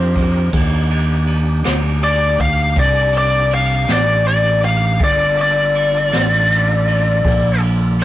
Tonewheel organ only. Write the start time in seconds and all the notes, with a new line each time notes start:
Already playing: D4 D#4 G4 A#4
0.54 A#3 D4 D#4 G4
5.02 A#3 D4 F4 A4